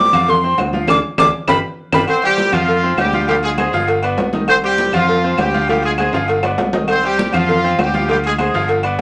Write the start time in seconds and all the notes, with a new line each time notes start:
Already playing: D6
0.13 F2 F3 F4 F5, cowbell, high conga, low conga, low agogo, claves
0.28 C6, cowbell, high conga, low conga
0.43 C4 C5, high conga
0.58 D2, cowbell, high conga, low timbale, low agogo, claves
0.73 F3 F4 F5, high conga
0.87 D2 D4 F4 G#4 D6, cowbell, low conga, high timbale, claves
1.18 D2 D4 F4 G#4 D6, cowbell, low conga, high timbale, claves
1.47 G1 F4 G4 B4 B5, cowbell, low conga, high timbale, claves
1.92 G1 F4 G4 B4 B5, cowbell, low conga, high timbale, claves
2.07 C4 C5, cowbell, high conga, low agogo, claves
2.22 G3 G4 C5, high conga, low agogo
2.37 cowbell, high conga, low timbale
2.52 F2 F3 F4 F5, cowbell, high conga, low conga, low agogo, claves
2.68 cowbell, high conga
2.83 C4 C5, high conga
2.97 D2 G3 G4, cowbell, high conga, low timbale, low agogo, claves
3.13 F3 F4 F5, high conga
3.28 F3 G3 F4 G4 F5, cowbell, high conga, low agogo
3.43 G#3 G#4, high conga, low agogo
3.58 G#3 G#4 C5, cowbell, high conga, low timbale, low agogo, claves
3.73 G1 F3 F4 F5, cowbell, high conga
3.88 cowbell, high conga, low agogo
4.03 B3 B4 D5, high conga, low agogo, claves
4.18 C2, cowbell, high conga, low timbale, low agogo
4.33 D#3 D#4 D#5, cowbell, high conga
4.48 C4 C5, cowbell, high conga, low agogo, claves
4.63 G3 G4 C5, high conga, low agogo
4.78 cowbell, high conga, low timbale
4.93 F2 F3 F4 F5, cowbell, high conga, low conga, low agogo, claves
5.09 cowbell, high conga
5.24 C4 C5, high conga
5.38 D2 G3 G4, cowbell, high conga, low timbale, low agogo, claves
5.54 F3 F4 F5, high conga
5.68 F3 G3 F4 G4 F5, cowbell, high conga, low agogo
5.83 G#3 G#4, high conga, low agogo
5.98 G#3 G#4 C5, cowbell, high conga, low timbale, low agogo, claves
6.13 G1 F3 F4 F5, cowbell, high conga, high timbale
6.28 cowbell, high conga, low agogo
6.43 B3 B4 D5, high conga, low timbale, low agogo, claves
6.58 C2, cowbell, high conga, low timbale, low agogo
6.73 D#3 D#4 D#5, cowbell, high conga, low timbale
6.88 C4 C5, cowbell, high conga, low agogo, claves
7.03 G3 G4 C5, high conga, low agogo
7.18 cowbell, high conga, low timbale
7.33 F2 F3 F4 F5, cowbell, high conga, low conga, low agogo, claves
7.49 cowbell, high conga, low conga
7.64 C4 C5, high conga
7.78 D2 G3 G4, cowbell, high conga, low timbale, low agogo, claves
7.94 F3 F4 F5, high conga
8.09 F3 G3 F4 G4 F5, cowbell, high conga, low agogo
8.24 G#3 G#4, high conga, low agogo
8.38 G#3 G#4 C5, cowbell, high conga, low timbale, low agogo, claves
8.53 G1 F3 F4 F5, cowbell, high conga
8.68 cowbell, high conga, low agogo
8.83 B3 B4 D5, high conga, low agogo, claves